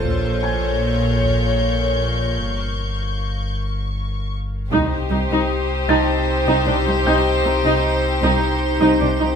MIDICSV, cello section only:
0, 0, Header, 1, 2, 480
1, 0, Start_track
1, 0, Tempo, 779221
1, 29, Time_signature, 3, 2, 24, 8
1, 5763, End_track
2, 0, Start_track
2, 0, Title_t, "Cello section"
2, 0, Program_c, 0, 48
2, 30, Note_on_c, 0, 46, 45
2, 1445, Note_off_c, 0, 46, 0
2, 2906, Note_on_c, 0, 36, 44
2, 2954, Note_off_c, 0, 36, 0
2, 3146, Note_on_c, 0, 36, 32
2, 3194, Note_off_c, 0, 36, 0
2, 3265, Note_on_c, 0, 36, 44
2, 3314, Note_off_c, 0, 36, 0
2, 3626, Note_on_c, 0, 36, 43
2, 3675, Note_off_c, 0, 36, 0
2, 3986, Note_on_c, 0, 36, 51
2, 4035, Note_off_c, 0, 36, 0
2, 4104, Note_on_c, 0, 36, 33
2, 4153, Note_off_c, 0, 36, 0
2, 4227, Note_on_c, 0, 36, 31
2, 4275, Note_off_c, 0, 36, 0
2, 4348, Note_on_c, 0, 36, 49
2, 4396, Note_off_c, 0, 36, 0
2, 4586, Note_on_c, 0, 36, 34
2, 4635, Note_off_c, 0, 36, 0
2, 4705, Note_on_c, 0, 36, 53
2, 4754, Note_off_c, 0, 36, 0
2, 5066, Note_on_c, 0, 36, 56
2, 5115, Note_off_c, 0, 36, 0
2, 5426, Note_on_c, 0, 36, 55
2, 5474, Note_off_c, 0, 36, 0
2, 5548, Note_on_c, 0, 36, 41
2, 5597, Note_off_c, 0, 36, 0
2, 5667, Note_on_c, 0, 36, 43
2, 5715, Note_off_c, 0, 36, 0
2, 5763, End_track
0, 0, End_of_file